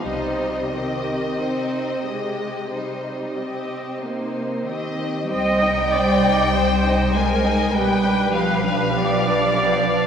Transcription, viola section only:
X:1
M:4/4
L:1/8
Q:1/4=48
K:Cm
V:1 name="Viola section"
[G,E] [E,C] C A, G, C B, C | e d c B =B2 d2 |]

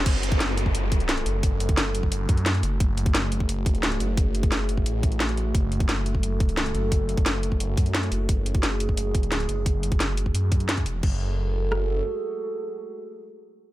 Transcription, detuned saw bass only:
X:1
M:4/4
L:1/8
Q:1/4=175
K:F#m
V:1 name="Detuned saw bass" clef=bass
F,,,2 F,,,4- F,,, F,,,- | F,,,4 F,,, F,,2 F,,, | F,,,2 F,,,4- F,,, F,,,- | F,,,4 A,,,4 |
F,,,2 F,,,4- F,,, F,,,- | F,,,4 F,,, F,,2 F,,, | F,,,2 F,,,4- F,,, F,,,- | F,,,4 F,,3 E,,, |
F,,,6 z2 | z8 |]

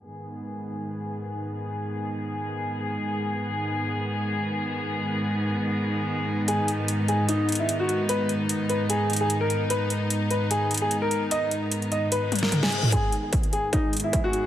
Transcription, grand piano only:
X:1
M:4/4
L:1/16
Q:"Swing 16ths" 1/4=149
K:G#m
V:1 name="Grand piano"
z16 | z16 | z16 | z16 |
G2 z4 G z D2 z E z F2 z | B2 z4 B z G2 z G z A2 z | B2 z4 B z G2 z G z A2 z | d2 z4 d z B2 z A z G2 z |
G2 z4 G z D2 z E z F2 z |]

